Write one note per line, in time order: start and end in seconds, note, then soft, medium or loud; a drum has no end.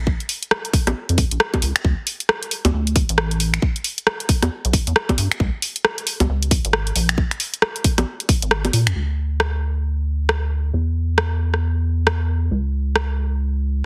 0.00 0.15 A#1 medium
0.07 kick loud
0.20 closed hi-hat soft
0.29 open hi-hat medium
0.43 closed hi-hat medium
0.51 cross-stick loud
0.65 closed hi-hat soft
0.73 kick loud
0.73 open hi-hat loud
0.87 0.93 A#1 medium
0.87 cross-stick medium
0.87 closed hi-hat medium
0.87 high bongo medium
1.09 1.24 F2 medium
1.09 closed hi-hat medium
1.18 kick loud
1.18 open hi-hat loud
1.31 1.38 A#1 medium
1.31 closed hi-hat medium
1.40 cross-stick loud
1.54 kick medium
1.54 closed hi-hat soft
1.54 high bongo medium
1.62 1.72 C#2 medium
1.62 open hi-hat loud
1.76 finger snap medium
1.76 closed hi-hat medium
1.85 1.95 D2 loud
1.85 kick loud
2.07 open hi-hat medium
2.20 closed hi-hat medium
2.29 cross-stick loud
2.43 closed hi-hat medium
2.51 open hi-hat loud
2.65 2.71 D2 medium
2.65 closed hi-hat medium
2.65 high bongo medium
2.74 3.04 D2 medium
2.87 closed hi-hat medium
2.96 kick loud
2.96 open hi-hat loud
3.09 3.59 A1 medium
3.09 closed hi-hat medium
3.18 cross-stick loud
3.31 closed hi-hat soft
3.40 open hi-hat loud
3.54 finger snap medium
3.54 closed hi-hat medium
3.62 kick loud
3.76 closed hi-hat soft
3.84 open hi-hat loud
3.98 closed hi-hat medium
4.07 cross-stick loud
4.20 closed hi-hat medium
4.29 kick loud
4.29 open hi-hat loud
4.43 4.49 E2 medium
4.43 cross-stick medium
4.43 closed hi-hat medium
4.43 high bongo medium
4.65 4.80 B1 medium
4.65 closed hi-hat medium
4.73 kick loud
4.73 open hi-hat loud
4.87 4.93 E2 medium
4.87 closed hi-hat medium
4.96 cross-stick loud
5.09 kick medium
5.09 closed hi-hat soft
5.09 high bongo medium
5.18 5.28 G2 medium
5.18 open hi-hat loud
5.32 finger snap medium
5.32 closed hi-hat medium
5.40 5.50 C#2 loud
5.40 kick loud
5.62 open hi-hat loud
5.76 closed hi-hat medium
5.85 cross-stick loud
5.98 closed hi-hat medium
6.07 open hi-hat loud
6.20 6.27 C#2 medium
6.20 closed hi-hat medium
6.20 high bongo medium
6.29 6.59 C#2 medium
6.43 closed hi-hat medium
6.51 kick loud
6.51 open hi-hat loud
6.65 6.92 G#1 medium
6.65 closed hi-hat medium
6.73 cross-stick loud
6.87 closed hi-hat soft
6.96 7.26 A#1 medium
6.96 open hi-hat loud
7.09 finger snap medium
7.09 closed hi-hat medium
7.18 kick loud
7.31 finger snap soft
7.31 closed hi-hat soft
7.40 open hi-hat loud
7.54 closed hi-hat medium
7.62 cross-stick loud
7.76 closed hi-hat medium
7.84 kick medium
7.84 open hi-hat loud
7.98 8.05 A#1 medium
7.98 cross-stick medium
7.98 closed hi-hat medium
7.98 high bongo medium
8.20 closed hi-hat medium
8.29 kick loud
8.29 open hi-hat loud
8.42 8.70 G#1 medium
8.42 closed hi-hat medium
8.51 cross-stick loud
8.65 closed hi-hat soft
8.65 high bongo medium
8.73 8.88 A#2 medium
8.73 open hi-hat loud
8.87 8.93 F2 medium
8.87 finger snap medium
8.87 closed hi-hat medium
8.96 10.72 D2 medium
9.40 cross-stick loud
10.29 cross-stick loud
10.73 12.50 E2 medium
11.18 cross-stick loud
11.54 cross-stick medium
12.07 cross-stick loud
12.51 13.85 C#2 medium
12.96 cross-stick loud